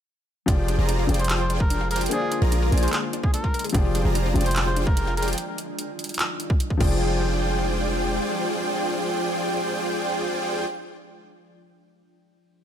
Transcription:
0.46 F1 D3 F3 G#3 D4 F4 G4 G#4 C5 D5 G5, kick, closed hi-hat
0.58 F4
0.68 D4, closed hi-hat
0.79 F1 F4 G#4 C5 D5 A#5
0.89 D4, closed hi-hat
0.99 F4
1.07 F1 F3 D4 F4 G#4 C5 D5 G5, closed hi-hat
1.11 D5, closed hi-hat
1.19 G4 C5, closed hi-hat
1.24 closed hi-hat
1.30 G4, clap, closed hi-hat
1.40 F4 C5
1.50 D4, closed hi-hat
1.60 A#4 D5, kick
1.70 D4, closed hi-hat
1.81 F4
1.91 G#4 A#4, closed hi-hat
1.96 closed hi-hat
2.01 G4, closed hi-hat
2.06 A#3 F4, closed hi-hat
2.11 A#3 D4 G#4 C5 D5, closed hi-hat
2.22 F4
2.32 D4, closed hi-hat
2.42 A#1 F4 G#4 A#4 D5 A#5
2.52 D4, closed hi-hat
2.62 F4
2.70 A#1 A#3 D4 F4 G#4 A#4 C5 D5 G#5, closed hi-hat
2.74 D5, closed hi-hat
2.83 G#4 C5, closed hi-hat
2.88 closed hi-hat
2.93 G#4 C5, clap, closed hi-hat
3.03 F4
3.13 D4, closed hi-hat
3.23 G#4 F5, kick
3.34 D4 A#4, closed hi-hat
3.44 F4, kick
3.54 A#4, closed hi-hat
3.59 closed hi-hat
3.64 G#4, closed hi-hat
3.69 F3, closed hi-hat
3.74 F1 F3 D4 F4 G4 G#4 C5 D5 G5, kick, closed hi-hat
3.85 F4
3.95 D4, closed hi-hat
4.05 F1 F4 G#4 C5 D5 A#5
4.15 D4, closed hi-hat
4.26 F4
4.34 F1 F3 D4 F4 G#4 C5 D5 G5, closed hi-hat
4.41 closed hi-hat
4.46 G4 C5, closed hi-hat
4.51 closed hi-hat
4.56 G4, clap, closed hi-hat
4.66 F4 C5
4.76 D4, closed hi-hat
4.87 A#4 D5, kick
4.97 D4, closed hi-hat
5.07 F4
5.17 G#4 A#4, closed hi-hat
5.23 closed hi-hat
5.28 G4, closed hi-hat
5.33 closed hi-hat
5.38 closed hi-hat
5.58 closed hi-hat
5.79 closed hi-hat
5.99 closed hi-hat
6.04 closed hi-hat
6.09 closed hi-hat
6.14 closed hi-hat
6.19 clap, closed hi-hat
6.40 closed hi-hat
6.50 kick
6.60 closed hi-hat
6.70 kick
6.77 F1 F3 G#3 D4 F4 G#4 C5 D5 G5, kick, crash
6.82 G#4 D5

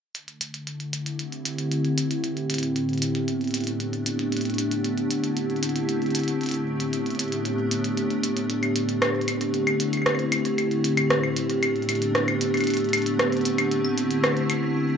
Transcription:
0.15 D3, closed hi-hat
0.22 A3
0.28 closed hi-hat
0.41 closed hi-hat
0.54 closed hi-hat
0.61 E4
0.67 closed hi-hat
0.80 closed hi-hat
0.93 closed hi-hat
1.03 C4, closed hi-hat
1.09 G4
1.19 closed hi-hat
1.32 closed hi-hat
1.45 closed hi-hat
1.59 closed hi-hat
1.72 closed hi-hat
1.85 closed hi-hat
1.98 closed hi-hat
2.11 closed hi-hat
2.23 A2, closed hi-hat
2.37 closed hi-hat
2.50 closed hi-hat
2.54 closed hi-hat
2.58 closed hi-hat
2.63 closed hi-hat
2.76 B3, closed hi-hat
2.89 closed hi-hat
2.93 closed hi-hat
2.98 closed hi-hat
3.02 closed hi-hat
3.15 D4, closed hi-hat
3.28 closed hi-hat
3.41 closed hi-hat
3.44 closed hi-hat
3.48 closed hi-hat
3.51 closed hi-hat
3.54 closed hi-hat
3.57 closed hi-hat
3.61 closed hi-hat
3.64 closed hi-hat
3.67 closed hi-hat
3.80 closed hi-hat
3.93 closed hi-hat
4.06 closed hi-hat
4.19 closed hi-hat
4.32 D3, closed hi-hat
4.37 closed hi-hat
4.41 closed hi-hat
4.45 closed hi-hat
4.50 closed hi-hat
4.54 closed hi-hat
4.58 closed hi-hat
4.71 closed hi-hat
4.76 E4
4.85 closed hi-hat
4.98 closed hi-hat
5.11 C4, closed hi-hat
5.24 closed hi-hat
5.37 closed hi-hat
5.50 closed hi-hat
5.56 closed hi-hat
5.63 closed hi-hat
5.69 closed hi-hat
5.76 closed hi-hat
5.89 closed hi-hat
6.02 closed hi-hat
6.06 closed hi-hat
6.11 closed hi-hat
6.15 closed hi-hat
6.19 closed hi-hat
6.24 closed hi-hat
6.28 closed hi-hat
6.41 A2, closed hi-hat
6.43 closed hi-hat
6.46 closed hi-hat
6.49 B3, closed hi-hat
6.51 closed hi-hat
6.54 closed hi-hat
6.80 closed hi-hat
6.93 closed hi-hat
7.03 D4, closed hi-hat
7.10 closed hi-hat
7.15 closed hi-hat
7.19 closed hi-hat
7.24 closed hi-hat
7.28 closed hi-hat
7.32 closed hi-hat
7.45 closed hi-hat
7.71 closed hi-hat
7.84 closed hi-hat
7.97 closed hi-hat
8.10 closed hi-hat
8.24 closed hi-hat
8.37 closed hi-hat
8.50 D3, closed hi-hat
8.63 closed hi-hat, claves
8.76 closed hi-hat
8.89 closed hi-hat
9.02 C4, cross-stick, closed hi-hat, claves
9.21 closed hi-hat
9.28 closed hi-hat, claves
9.40 E4, closed hi-hat
9.54 closed hi-hat
9.67 closed hi-hat, claves
9.80 closed hi-hat
9.93 closed hi-hat, claves
9.97 claves
10.02 claves
10.06 cross-stick, closed hi-hat, claves
10.10 claves
10.15 claves
10.19 closed hi-hat
10.32 closed hi-hat, claves
10.45 closed hi-hat
10.58 A2, closed hi-hat, claves
10.71 closed hi-hat
10.84 closed hi-hat
10.97 closed hi-hat, claves
11.10 D4, cross-stick, closed hi-hat
11.23 claves
11.37 closed hi-hat
11.48 B3, closed hi-hat
11.63 closed hi-hat, claves
11.76 closed hi-hat
11.82 closed hi-hat
11.89 closed hi-hat, claves
11.95 closed hi-hat
12.02 closed hi-hat
12.15 cross-stick, closed hi-hat
12.28 closed hi-hat, claves
12.41 closed hi-hat
12.54 closed hi-hat, claves
12.57 closed hi-hat
12.61 closed hi-hat, claves
12.64 closed hi-hat
12.67 D3, closed hi-hat, claves
12.70 closed hi-hat
12.74 closed hi-hat, claves
12.77 closed hi-hat
12.80 closed hi-hat
12.84 C4, closed hi-hat
12.89 closed hi-hat
12.93 closed hi-hat, claves
12.98 closed hi-hat
13.02 closed hi-hat
13.06 closed hi-hat
13.19 cross-stick, closed hi-hat, claves
13.32 E4, closed hi-hat
13.37 closed hi-hat
13.41 closed hi-hat
13.45 closed hi-hat
13.58 closed hi-hat, claves
13.72 closed hi-hat
13.85 claves
13.98 closed hi-hat
14.11 closed hi-hat
14.24 cross-stick, closed hi-hat, claves
14.37 closed hi-hat
14.50 closed hi-hat, claves
14.76 A2

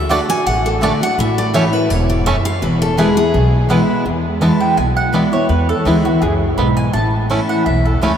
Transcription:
Already playing: D2 E5
0.09 D3 A3 D4 F#4 D5 F#5 A5
0.29 D4 F#4 G#5
0.46 A1 A2 F#5
0.66 A4
0.81 D3 A3 D4 F#4 D5 A5
1.01 D4 F#4 F#5
1.18 A1 A2 E5
1.38 D5
1.54 E3 A3 C#4 E4 C#5 A5
1.73 C#4 E4 B4
1.90 E1 G#2 C#5
2.10 D5
2.26 F#2 A3 C#4 E4 C#5 E5 A5
2.45 F5
2.62 E1 E2 B4
2.82 A4
2.97 E3 G#3 B3 E4 G#4 B4 G#5
3.17 B3 E4 G#4
3.34 B1 B2
3.69 E3 G#3 B3 E4 B4 G#5
4.05 E2
4.41 E3 G#3 B3 E4 A5
4.60 G5
4.77 B1 B2 G#5
4.97 F#5
5.13 E3 G#3 B3 E4 D5
5.32 B3 E4 C#5
5.49 E2 B4
5.69 A4
5.85 D2 E3 G#3 B3 E4 G#4
6.05 B3 E4 F#4
6.22 C#2 F#2 G#4
6.57 B1 G#2 B3 E4 B5
6.77 G#5
6.93 A1 A2 A5
7.29 E3 A3 C#4 E4
7.49 F#5
7.66 B1 E2 E5
7.85 A4
8.02 C#2 E3 A3 C#4 E4 C#5

